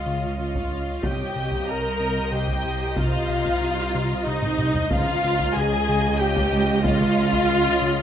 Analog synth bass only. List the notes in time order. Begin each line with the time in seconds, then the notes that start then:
0.06 C#3
0.39 C#3
0.71 C#3
1.03 C3
1.36 C3
1.68 C3
2.00 C3
2.32 C3
2.64 C3
2.98 C3
3.29 C3
3.61 C3
3.95 C3
4.27 C3
4.59 C3
4.92 C#3
5.24 C#3
5.56 C#3
5.89 C#3
6.21 C#3
6.53 C#3
6.85 C#3
7.17 C#3
7.50 C#3
7.82 C#3